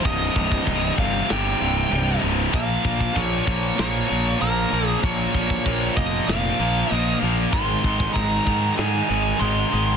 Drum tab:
CC |x---x---x---x---|x---x---x---x---|x---x---x---x---|x---x---x---x---|
SD |--------o-------|--------o-------|--------o-------|--------o-------|
BD |o-ooo-o---------|o-ooo-o---------|o-ooo-o---------|o-ooo-o---------|